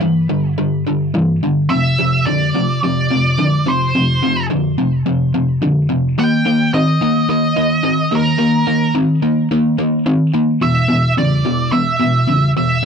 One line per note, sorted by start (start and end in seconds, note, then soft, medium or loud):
0.01 0.27 G2 medium
0.01 0.27 E3 medium
0.30 0.55 G2 medium
0.30 0.55 D3 medium
0.58 0.84 G2 medium
0.58 0.84 D3 medium
0.87 1.12 G2 medium
0.87 1.12 D3 medium
1.14 1.40 G2 medium
1.14 1.40 E3 medium
1.43 1.68 G2 medium
1.43 1.69 D3 medium
1.70 1.96 F2 medium
1.70 1.96 C3 medium
1.70 2.26 E5 loud
1.99 2.24 F2 medium
1.99 2.25 C3 medium
2.26 2.52 F2 medium
2.26 2.53 D3 medium
2.26 2.79 D5 medium
2.55 2.80 F2 medium
2.55 2.81 C3 medium
2.83 3.09 F2 medium
2.83 3.09 C3 medium
2.83 3.70 D5 medium
3.11 3.36 F2 medium
3.11 3.37 C3 medium
3.39 3.64 F2 medium
3.39 3.65 D3 medium
3.66 3.92 F2 medium
3.66 3.92 C3 medium
3.66 4.48 C5 medium
3.95 4.20 F2 medium
3.95 4.20 C3 medium
4.23 4.48 F2 medium
4.23 4.48 C3 medium
4.50 4.76 F2 medium
4.50 4.76 D3 medium
4.78 5.04 F2 medium
4.78 5.04 C3 medium
5.06 5.32 F2 medium
5.06 5.32 C3 medium
5.34 5.60 F2 medium
5.34 5.60 C3 medium
5.62 5.87 F2 medium
5.62 5.88 D3 medium
5.89 6.15 F2 medium
5.89 6.15 C3 medium
6.18 6.43 D#3 medium
6.18 6.43 A#3 medium
6.18 6.70 G5 loud
6.45 6.71 D#3 medium
6.45 6.71 A#3 medium
6.74 6.99 D#3 medium
6.74 6.99 C4 medium
6.74 7.28 D#5 medium
7.01 7.27 D#3 medium
7.01 7.27 A#3 medium
7.29 7.54 D#3 medium
7.29 7.55 A#3 medium
7.29 8.15 D#5 medium
7.56 7.82 D#3 medium
7.56 7.82 A#3 medium
7.83 8.09 D#3 medium
7.83 8.09 C4 medium
8.12 8.37 D#3 medium
8.12 8.37 A#3 medium
8.12 8.93 A#4 medium
8.39 8.64 D#3 medium
8.39 8.65 A#3 medium
8.67 8.93 D#3 medium
8.67 8.93 A#3 medium
8.95 9.20 D#3 medium
8.95 9.20 C4 medium
9.22 9.48 D#3 medium
9.22 9.48 A#3 medium
9.51 9.76 D#3 medium
9.51 9.76 A#3 medium
9.78 10.04 D#3 medium
9.78 10.04 A#3 medium
10.06 10.31 D#3 medium
10.06 10.31 C4 medium
10.34 10.59 D#3 medium
10.34 10.59 A#3 medium
10.61 10.87 E2 medium
10.61 10.87 B2 medium
10.61 11.14 E5 loud
10.88 11.14 E2 medium
10.88 11.14 B2 medium
11.17 11.42 E2 medium
11.17 11.43 C#3 medium
11.17 11.72 D5 medium
11.45 11.70 E2 medium
11.45 11.70 B2 medium
11.72 11.97 E2 medium
11.72 11.97 B2 medium
11.72 12.51 E5 medium
12.00 12.25 E2 medium
12.00 12.25 B2 medium
12.28 12.53 E2 medium
12.28 12.53 C#3 medium
12.56 12.81 E2 medium
12.56 12.81 B2 medium
12.56 12.85 E5 medium